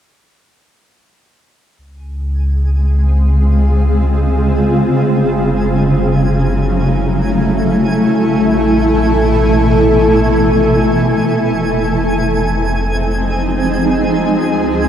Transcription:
1.77 C#2 C#3 G#5
1.95 G#4
2.03 G#3
2.29 C4
2.34 F4
4.95 F#1
5.04 F#3
5.30 A3
5.78 E4
6.17 A4
8.09 A1 B2
8.35 E3
11.25 F1 C4
11.41 G#3
11.52 F3
11.82 D#4
12.43 G#4
14.41 C#2

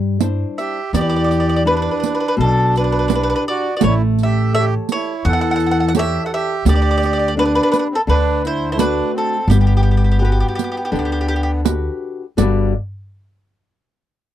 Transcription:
Already playing: G2 G3
0.20 D4 E4 C5, riq
0.58 G4 E5, riq
0.93 E2 E3 G4 D5, riq
1.01 D5
1.09 D5
1.16 D5
1.24 D5
1.31 D5, riq
1.40 D5
1.49 D5
1.56 D5
1.65 D4 E4 G4 B4
1.77 B4
1.82 B4
1.91 B4
2.00 B4, riq
2.06 B4
2.15 B4
2.20 B4
2.28 B4
2.37 B1 B2 A4
2.43 D4
2.76 D4 B4, riq
2.84 B4
2.92 B4
2.99 B4
3.08 D4 E4 G4 B4, riq
3.15 B4
3.23 B4
3.30 B4
3.36 B4
3.48 F#4 D5
3.77 F#4 D5
3.81 A1 A3 C#5, riq
3.86 E4
4.18 riq
4.23 G4 E5
4.54 G4 A4 C#5 E5
4.59 G4
4.89 C#5, riq
4.94 E4
5.25 E2 E3 A4 F#5
5.33 F#5
5.41 F#5
5.51 F#5
5.56 F#5
5.60 riq
5.67 F#5
5.71 F#5
5.80 F#5
5.88 F#5
5.95 G4 A4 C#5, riq
5.99 E5
6.25 A4 F#5
6.33 G4 E5
6.65 D2 D3 G4 D5, riq
6.76 D5
6.82 D5
6.91 D5
6.97 D5
7.03 D5, riq
7.13 D5
7.19 D5
7.28 D5
7.37 B3 D4 G4 B4
7.45 B4
7.55 B4
7.63 B4
7.72 B4, riq
7.79 B4
7.91 C4
7.95 A4
8.07 D2 D3 D4 B4
8.45 E4 C5, riq
8.71 E4 C5
8.77 A3 D4 F#4 B4, riq
9.14 C4 A4
9.48 G1 G3 B3 G4, riq
9.61 G4
9.67 G4
9.77 G4
9.83 G4
9.91 G4
9.97 G4
10.04 G4
10.12 G4
10.19 F#4 G4 B4
10.25 G4
10.32 G4
10.40 G4
10.48 G4
10.55 G4, riq
10.64 G4
10.72 G4
10.77 G4
10.85 G4
10.92 D2 D3 G4, riq
10.99 G4
11.05 G4
11.12 G4
11.21 G4
11.28 G4
11.36 G4
11.43 G4
11.65 F#4 G4 B4, riq
12.37 G1 G2 D3 G3 F#4 B4 D5, riq

